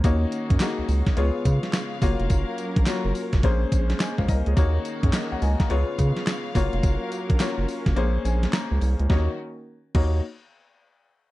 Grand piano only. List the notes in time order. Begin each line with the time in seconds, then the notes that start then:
0.04 A#3 D#4 F#4 C#5
0.61 A#3 D#4 F#4 G#4
1.17 B3 F4 G#4 C#5
2.02 A#3 F4 F#4 C#5
2.87 A#3 F4 F#4 C#5
3.43 A#3 C#4 G#4 C5
4.01 D#5 G#5
4.18 C5 F5
4.29 A#4 D#5
4.47 G#4 C#5
4.57 A#3 D#4 F#4 C#5
5.04 G#4 C#5
5.14 A#4 D#5
5.32 C#5 F#5
5.42 D#5 G#5
5.60 F5 A#5
5.70 B3 F4 G#4 C#5
6.55 A#3 F4 F#4 C#5
7.40 A#3 F4 F#4 C#5
7.96 A#3 C#4 G#4 C5
8.25 G#5
8.53 A#5
9.10 A#3 D#4 F#4 C#5
9.95 A#3 D#4 F#4 C#5